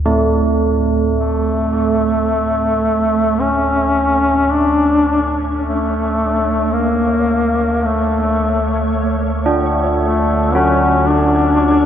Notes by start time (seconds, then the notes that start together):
Already playing: D2 A2
0.06 A3
1.19 D2 A3 C#5
3.41 C#4
4.52 D4
5.63 A3
6.73 A#3
7.84 A3
9.46 D4
10.00 A3
10.55 C#4 F#4
11.08 D4